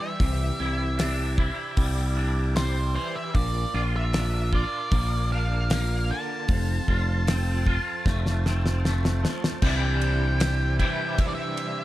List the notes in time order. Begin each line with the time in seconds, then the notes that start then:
Already playing: E3 G3 D4 E4 G4 D5 E5 C6
0.00 E5
0.20 C2 C3 D6, kick, open hi-hat
0.60 C2 E4
0.98 D4, snare, open hi-hat
1.38 E4, kick
1.77 C2 G3, kick, open hi-hat
2.17 D4
2.56 G3 C5, snare, open hi-hat
2.95 E3 C5
3.16 E5
3.33 A#1 A#2 F4 A#4 D5, kick, open hi-hat
3.74 A#1 F4 D5
3.96 E5
4.13 D4, snare, open hi-hat
4.53 F4 D5, kick
4.91 A#1 A#3, kick, open hi-hat
5.32 D4 F5
5.70 A#3, snare, open hi-hat
6.10 D3 A5
6.48 F1 F2 A4 C5 A5, kick, open hi-hat
6.88 F1 F4, kick
7.27 C4, snare, open hi-hat
7.67 F4, kick
8.06 F1 A3, kick, snare
8.26 snare
8.46 C4, snare
8.66 snare
8.85 A3, snare
9.05 snare
9.23 F3, snare
9.44 snare
9.62 C2 C3 E3 G3 D4 E4 C5 E5 G5, kick, crash
9.70 A5
9.77 G5
10.01 ride
10.40 snare, ride
10.79 E3 G3 D4 E4 G5, kick, ride
10.83 C3
11.18 E5, kick, ride
11.28 D5
11.35 E5
11.57 ride